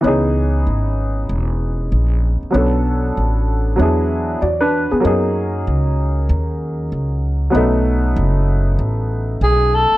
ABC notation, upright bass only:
X:1
M:4/4
L:1/16
Q:"Swing 16ths" 1/4=96
K:B
V:1 name="Upright bass" clef=bass
C,,4 G,,,4 E,,,4 A,,,3 z | B,,,4 =A,,,4 E,,4 E,,3 z | F,,4 C,,4 D,,4 C,,4 | B,,,4 F,,,4 =A,,,4 B,,,3 z |]